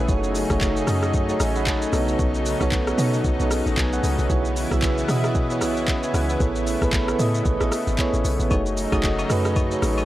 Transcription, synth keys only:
0.00 0.08 A3 medium
0.00 0.11 C#4 medium
0.00 0.11 E4 medium
0.00 0.10 G#4 medium
0.00 0.11 B4 loud
0.00 0.11 C#5 loud
0.08 0.41 A3 medium
0.08 0.41 D#4 medium
0.08 0.42 F#4 medium
0.08 0.42 G#4 medium
0.08 0.42 C#5 medium
0.50 0.81 A3 medium
0.50 0.81 D#4 medium
0.50 0.81 F#4 medium
0.50 0.82 G#4 medium
0.50 0.82 C#5 loud
0.87 1.20 A3 medium
0.87 1.20 D#4 medium
0.87 1.21 F#4 medium
0.87 1.21 G#4 medium
0.87 1.21 D#5 loud
1.29 1.60 A3 medium
1.29 1.60 D#4 medium
1.29 1.60 F#4 medium
1.29 1.61 G#4 medium
1.29 1.61 C#5 loud
1.41 1.56 D#5 medium
1.41 1.55 G#5 medium
1.56 1.67 F#5 medium
1.56 1.66 B5 medium
1.67 1.82 D#5 medium
1.67 1.82 A5 medium
1.83 2.08 D#5 medium
1.83 2.07 G#5 medium
1.92 2.45 B3 medium
1.92 2.00 D4 medium
1.92 2.46 F#4 medium
1.92 2.46 A4 medium
1.92 2.47 C#5 loud
1.99 2.49 D#4 medium
2.60 2.91 B3 medium
2.60 2.92 D#4 medium
2.60 2.92 F#4 medium
2.60 2.92 A4 medium
2.60 2.92 C#5 loud
2.98 3.30 B3 medium
2.98 3.31 D#4 medium
2.98 3.31 F#4 medium
2.98 3.31 A4 medium
2.98 3.32 C#5 loud
3.39 3.70 B3 medium
3.39 3.71 D#4 medium
3.39 3.71 F#4 medium
3.39 3.52 A4 medium
3.39 3.50 C#5 medium
3.51 3.66 G#4 medium
3.51 3.66 C#5 medium
3.67 3.77 A4 medium
3.67 3.77 D#5 medium
3.78 3.92 D#5 medium
3.78 3.92 G#5 medium
3.93 4.04 C#5 medium
3.93 4.03 F#5 medium
4.04 4.19 A4 medium
4.04 4.18 D#5 medium
4.19 4.30 G#4 medium
4.19 4.31 C#5 medium
4.29 4.62 B3 medium
4.29 4.62 E4 medium
4.29 4.63 F#4 medium
4.29 4.63 G#4 medium
4.29 4.63 C#5 medium
4.71 5.02 B3 medium
4.71 5.02 E4 medium
4.71 5.03 F#4 medium
4.71 5.03 G#4 medium
4.71 5.03 E5 loud
5.08 5.41 B3 medium
5.08 5.41 E4 medium
5.08 5.42 F#4 medium
5.08 5.42 G#4 medium
5.08 5.42 D#5 loud
5.50 5.81 B3 medium
5.50 5.81 E4 medium
5.50 5.81 F#4 medium
5.50 5.82 G#4 medium
5.50 5.82 C#5 medium
5.89 6.03 B4 medium
5.89 6.03 E5 medium
6.04 6.14 D#5 medium
6.04 6.14 G#5 medium
6.14 6.29 C#5 medium
6.14 6.29 F#5 medium
6.30 6.55 B4 medium
6.30 6.55 E5 medium
6.39 6.72 B3 medium
6.39 6.73 E4 medium
6.39 6.73 G#4 medium
6.39 6.73 A4 medium
6.39 6.74 C#5 medium
6.81 7.12 B3 medium
6.81 7.13 E4 medium
6.81 7.13 G#4 medium
6.81 7.13 A4 medium
6.81 7.14 B4 loud
7.19 7.51 B3 medium
7.19 7.52 E4 medium
7.19 7.52 G#4 medium
7.19 7.52 A4 medium
7.19 7.53 D#5 loud
7.60 7.91 B3 medium
7.60 7.92 E4 medium
7.60 7.92 G#4 medium
7.60 7.92 A4 medium
7.60 7.93 D#5 loud
7.98 8.42 B3 medium
7.98 8.42 E4 medium
7.98 8.42 G#4 medium
7.98 8.43 A4 medium
7.98 8.43 C#5 loud
8.50 8.83 A3 medium
8.50 8.83 D#4 medium
8.50 8.84 F#4 medium
8.50 8.84 G#4 medium
8.50 8.84 C#5 medium
8.92 9.23 A3 medium
8.92 9.23 D#4 medium
8.92 9.24 F#4 medium
8.92 9.24 G#4 medium
8.92 9.24 D#5 loud
9.29 9.62 A3 medium
9.29 9.62 D#4 medium
9.29 9.63 F#4 medium
9.29 9.63 G#4 medium
9.29 9.63 B4 loud
9.71 10.02 A3 medium
9.71 10.02 D#4 medium
9.71 10.03 F#4 medium
9.71 10.03 G#4 medium
9.71 10.03 C#5 medium

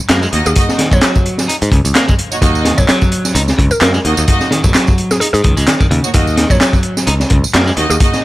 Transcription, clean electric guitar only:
0.09 0.21 A#3 loud
0.22 0.28 G#3 medium
0.78 0.90 D#3 medium
0.91 1.00 F#3 medium
1.01 1.47 F#3 medium
1.48 1.55 D#4 medium
1.71 1.78 C#3 medium
1.95 2.07 A#3 loud
2.08 2.13 G#3 medium
2.65 2.76 D#3 medium
2.77 2.87 F#3 medium
2.88 3.34 F#3 medium
3.35 3.41 D#4 medium
3.58 3.65 C#3 medium
3.81 3.93 A#3 loud
3.94 4.00 G#3 medium
4.51 4.62 D#3 medium
4.64 4.73 F#3 medium
4.74 5.20 F#3 medium
5.20 5.27 D#4 medium
5.44 5.55 D#3 medium
5.57 5.66 G#3 medium
5.67 5.74 D#3 medium
5.80 5.86 D#3 medium
5.91 6.02 C#3 medium
6.37 6.48 D#3 medium
6.50 6.59 F#3 medium
6.60 7.06 F#3 medium
7.07 7.13 D#4 medium
7.30 7.37 C#3 medium
7.53 7.66 A#3 loud
7.66 7.72 G#3 medium

